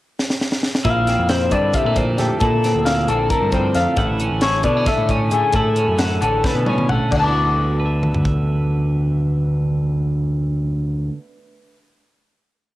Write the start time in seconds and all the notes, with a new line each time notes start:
0.19 snare
0.30 snare
0.41 snare
0.52 snare
0.63 snare
0.75 snare
0.85 A#1 A#2 E4 F5, kick, closed hi-hat
1.07 C4, snare, closed hi-hat
1.19 F2
1.29 E4 C5, snare, closed hi-hat
1.51 G2 D3 C4 D5, kick, closed hi-hat
1.74 G3 E5, kick, closed hi-hat
1.85 A#2 A3
1.96 F2 C4 C5, kick, closed hi-hat
2.18 A#2 A3 G4, snare, closed hi-hat
2.40 A#2 E4 A4, kick, closed hi-hat
2.64 C4, snare, closed hi-hat
2.75 D2
2.85 E4 F5, snare, closed hi-hat
3.08 A#1 D3 C4 A4, closed hi-hat
3.30 A3 A#4, kick, closed hi-hat
3.42 G2
3.52 F2 C4 C5, kick, closed hi-hat
3.75 F2 A3 F5, snare, closed hi-hat
3.97 A1 A2 E4 F#5, kick, closed hi-hat
4.20 C#4, closed hi-hat
4.31 A1
4.41 E4 C#5, snare, closed hi-hat
4.63 B2 D3 B3 D5, kick, closed hi-hat
4.77 C#4
4.86 A3 E5, kick, snare, closed hi-hat
4.98 A2
5.09 A2 C#4 C#5, kick, closed hi-hat
5.31 A2 A3 G#4, closed hi-hat
5.53 A2 E4 A4, kick, closed hi-hat
5.76 C#4, closed hi-hat
5.88 F#2
5.99 E4 F#5, snare, closed hi-hat
6.21 A1 D3 C#4 A4, closed hi-hat
6.44 A3 B4, kick, snare
6.55 B2
6.66 A2 C#4 C#5, high tom
6.78 mid tom
6.89 A1 A3 F#5, mid tom
7.11 D2 D5 F#5, kick, crash
7.17 D3 A5
7.22 B3 D6
7.27 E4
7.33 F#4
7.80 B4
7.86 E5
8.03 mid tom
8.14 floor tom
8.25 kick